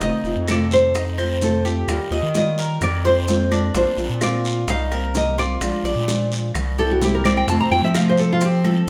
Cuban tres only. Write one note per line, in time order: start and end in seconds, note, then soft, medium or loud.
0.01 0.46 D#4 medium
0.48 0.93 A4 medium
0.95 1.17 D#4 medium
1.18 1.63 C5 medium
1.65 2.10 G4 medium
2.12 2.57 D#5 medium
2.59 3.04 A#4 medium
3.05 3.50 C5 medium
3.52 3.74 D4 medium
3.75 4.20 D4 medium
4.22 4.67 F4 medium
4.68 4.91 D#4 medium
4.92 5.37 A#4 medium
5.38 5.84 F4 medium
5.85 6.30 D5 medium
6.79 7.24 G4 medium
7.25 7.48 C4 medium
7.49 7.94 C4 medium
7.95 8.40 F4 medium
8.41 8.64 C4 medium
8.65 8.89 A4 medium